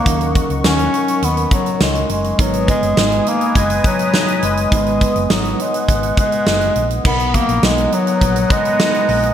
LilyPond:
<<
  \new Staff \with { instrumentName = "Analog synth pad" } { \time 4/4 \key gis \minor \tempo 4 = 103 << { <ais' dis'' cis'''>1 | <b' dis'' dis'''>1~ | <b' dis'' dis'''>1 | <b fis'' dis'''>1 | } \\ { fis''1 | gis''1 | fis''1 | ais''1 | } >> }
  \new Staff \with { instrumentName = "Tine electric piano" } { \time 4/4 \key gis \minor <fis cis' dis' ais'>1 | <gis b dis' b'>1 | <gis b dis' b'>1 | <fis b dis' ais'>1 | }
  \new Staff \with { instrumentName = "Bass clarinet" } { \clef bass \time 4/4 \key gis \minor ais8 r8 cis'4 b8 fis8 gis8 gis8 | fis8 gis4 ais8 gis8 fis4 gis8 | gis4 fis8 gis4 gis4. | b8 ais8 gis8 fis4 gis4. | }
  \new Staff \with { instrumentName = "Fingered electric bass" } { \clef bass \time 4/4 \key gis \minor dis,8. cis,16 dis,8 r8 dis,8 r8 cis,8 fis,,8 | gis,,8. fis,,16 gis,,8 r8 fis,,8 r4 fis,,8 | gis,,8. fis,,16 gis,,8 r8 gis,,8 r8 fis,,8 ais,,8 | b,,8. ais,,16 b,,8 r8 ais,,8 r4 ais,,8 | }
  \new DrumStaff \with { instrumentName = "Drums" } \drummode { \time 4/4 <hh bd>16 hh16 <hh bd>16 hh16 sn16 hh16 hh16 hh16 hh16 hh16 <hh bd>16 hh16 sn16 hh16 hh16 hh16 | <hh bd>16 hh16 <hh bd>16 hh16 sn16 hh16 hh16 hh16 <hh bd>16 hh16 <hh bd>16 hh16 sn16 hh16 hh16 hh16 | <hh bd>16 hh16 <hh bd>16 hh16 sn16 hh16 hh16 hh16 <hh bd>16 hh16 <hh bd>16 hh16 sn16 hh16 hh16 hh16 | <cymc bd>16 hh16 <hh bd>16 hh16 sn16 hh16 hh16 hh16 <hh bd>16 hh16 <hh bd>16 hh16 sn16 hh16 hho16 hh16 | }
>>